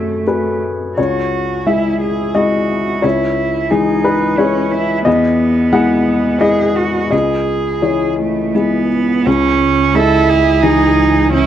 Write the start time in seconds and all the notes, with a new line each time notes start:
Already playing: F#2 A3 F#4 A4 C#5
0.27 A3 F#4 G#4 B4
0.97 C#2 F#4 C#5
1.66 G#3 E4 G#4 E5
2.00 G#4
2.35 G#3 E4 F#4 G#4 D#5
3.02 C#2 E4 C#5
3.70 E3 G#3 D#4 G#4
4.04 B4
4.38 G#3 C#4 E4 G#4 C#5
4.72 E4
5.05 E2 B3 D#5
5.73 G#3 E4 G#4 F#5
6.40 G#3 E4 G#4 D#5
6.76 F#4
7.11 C#2 G#4 D#5
7.82 E3 E4 G#4 C#5
8.19 A3
8.55 G#3 B3 E4 G#4
9.26 C#2 C#4
9.95 G#3 E4 A4
10.30 G#4
10.63 E3 D#4 G#4
11.32 C#4 E4